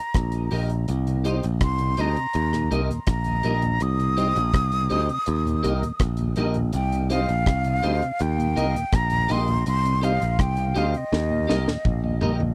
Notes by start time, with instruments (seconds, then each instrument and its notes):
Already playing: flute A#5
0.14 picked electric bass A#1, kick, cross-stick, closed hi-hat
0.32 closed hi-hat
0.51 picked electric bass A#1, clean electric guitar G4 A#4 D#5, open hi-hat
0.70 closed hi-hat
0.88 picked electric bass C2, closed hi-hat
1.07 tonewheel organ C3, closed hi-hat
1.24 tonewheel organ G3 C4 D#4, clean electric guitar G4 C5 D#5, closed hi-hat
1.43 picked electric bass A#1, closed hi-hat
1.61 picked electric bass C2, flute C6, kick, cross-stick, closed hi-hat
1.78 tonewheel organ C3, closed hi-hat
1.97 picked electric bass D2, tonewheel organ G3 C4 D#4, clean electric guitar G4 C5 D#5, flute A#5, closed hi-hat
2.16 tonewheel organ C3, closed hi-hat
2.33 picked electric bass D#2, closed hi-hat
2.53 tonewheel organ D#2 A#2, cross-stick, closed hi-hat
2.71 picked electric bass C2, tonewheel organ G3 A#3 D#4, clean electric guitar G4 A#4 D#5, closed hi-hat
2.90 tonewheel organ D#2 A#2, closed hi-hat
3.07 picked electric bass A#1, flute A#5, kick, cross-stick, closed hi-hat
3.24 tonewheel organ D#2 A#2, closed hi-hat
3.43 picked electric bass A#1, tonewheel organ G3 A#3 D#4, clean electric guitar G4 A#4 D#5, closed hi-hat
3.62 tonewheel organ D#2 A#2, closed hi-hat
3.80 picked electric bass C2, flute D#6, closed hi-hat
4.00 tonewheel organ C3, closed hi-hat
4.17 tonewheel organ G3 C4 D#4, clean electric guitar G4 C5 D#5, closed hi-hat
4.36 picked electric bass A#1, closed hi-hat
4.54 picked electric bass C2, kick, cross-stick, closed hi-hat
4.72 tonewheel organ C3, closed hi-hat
4.90 picked electric bass D2, tonewheel organ G3 C4 D#4, clean electric guitar G4 C5 D#5, closed hi-hat
5.08 tonewheel organ C3, closed hi-hat
5.26 picked electric bass D#2, closed hi-hat
5.45 tonewheel organ D#2 A#2, closed hi-hat
5.63 picked electric bass C2, tonewheel organ G3 A#3 D#4, clean electric guitar G4 A#4 D#5, closed hi-hat
5.82 tonewheel organ D#2 A#2, closed hi-hat
6.00 picked electric bass A#1, kick, cross-stick, closed hi-hat
6.17 tonewheel organ D#2 A#2, closed hi-hat
6.36 picked electric bass A#1, tonewheel organ G3 A#3 D#4, clean electric guitar G4 A#4 D#5, closed hi-hat
6.54 tonewheel organ D#2 A#2, closed hi-hat
6.73 picked electric bass C2, flute G5, closed hi-hat
6.92 tonewheel organ C3, closed hi-hat
7.10 tonewheel organ G3 C4 D#4, clean electric guitar G4 C5 D#5, flute F5, closed hi-hat
7.29 picked electric bass A#1, closed hi-hat
7.46 picked electric bass C2, kick, cross-stick, closed hi-hat
7.64 tonewheel organ C3, closed hi-hat
7.82 picked electric bass D2, tonewheel organ G3 C4 D#4, clean electric guitar G4 C5 D#5, closed hi-hat
8.02 tonewheel organ C3, closed hi-hat
8.19 picked electric bass D#2, flute G5, closed hi-hat
8.38 tonewheel organ D#2 A#2, closed hi-hat
8.55 picked electric bass C2, tonewheel organ G3 A#3 D#4, clean electric guitar G4 A#4 D#5, closed hi-hat
8.74 tonewheel organ D#2 A#2, closed hi-hat
8.92 picked electric bass A#1, flute A#5, kick, cross-stick, closed hi-hat
9.10 tonewheel organ D#2 A#2, closed hi-hat
9.28 picked electric bass A#1, tonewheel organ G3 A#3 D#4, clean electric guitar G4 A#4 D#5, flute C6, closed hi-hat
9.48 tonewheel organ D#2 A#2, closed hi-hat
9.66 picked electric bass C2, flute C6, closed hi-hat
9.85 tonewheel organ C3, closed hi-hat
10.01 tonewheel organ G3 C4 D#4, clean electric guitar G4 C5 D#5, flute F5, closed hi-hat
10.22 picked electric bass A#1, closed hi-hat
10.39 picked electric bass C2, flute G5, kick, cross-stick, closed hi-hat
10.57 tonewheel organ C3, closed hi-hat
10.75 picked electric bass D2, tonewheel organ G3 C4 D#4, clean electric guitar G4 C5 D#5, flute F5, closed hi-hat
10.94 tonewheel organ C3, flute D#5, closed hi-hat
11.13 picked electric bass D#2, snare
11.30 tonewheel organ D#2 A#2
11.47 picked electric bass C2, tonewheel organ G3 A#3 D#4, clean electric guitar G4 A#4 D#5, snare
11.68 tonewheel organ D#2 A#2, snare
11.85 picked electric bass A#1, kick, mid tom
12.04 tonewheel organ D#2 A#2
12.21 picked electric bass A#1, tonewheel organ G3 A#3 D#4, clean electric guitar G4 A#4 D#5, floor tom
12.40 tonewheel organ D#2 A#2, floor tom